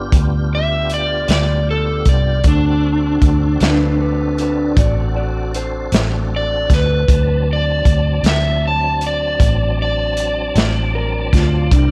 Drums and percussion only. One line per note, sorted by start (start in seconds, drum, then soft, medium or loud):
0.12 kick medium
0.12 closed hi-hat medium
0.90 closed hi-hat soft
1.28 snare medium
1.28 closed hi-hat medium
2.05 kick medium
2.05 closed hi-hat soft
2.44 kick medium
2.44 closed hi-hat medium
3.22 kick medium
3.22 closed hi-hat soft
3.60 snare medium
3.60 closed hi-hat medium
4.38 closed hi-hat soft
4.77 kick medium
4.77 closed hi-hat medium
5.54 closed hi-hat medium
5.92 snare medium
5.92 closed hi-hat medium
6.70 kick medium
6.70 snare soft
6.70 closed hi-hat medium
7.08 kick medium
7.08 closed hi-hat medium
7.85 kick medium
7.85 closed hi-hat medium
8.24 snare medium
8.24 closed hi-hat medium
9.01 closed hi-hat soft
9.40 kick medium
9.40 closed hi-hat medium
10.17 closed hi-hat soft
10.56 snare medium
10.56 closed hi-hat medium
11.33 kick medium
11.33 snare soft
11.33 closed hi-hat medium
11.71 kick medium
11.71 closed hi-hat medium